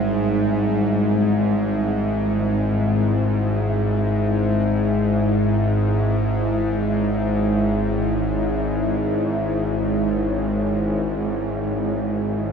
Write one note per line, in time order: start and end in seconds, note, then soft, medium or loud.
0.00 12.52 G#1 medium
0.00 12.52 G#2 medium
0.00 2.07 G3 medium
0.00 12.52 E4 medium
0.00 3.66 B4 medium
0.00 12.52 E5 medium
2.07 12.52 G#3 medium
5.17 12.52 C#5 medium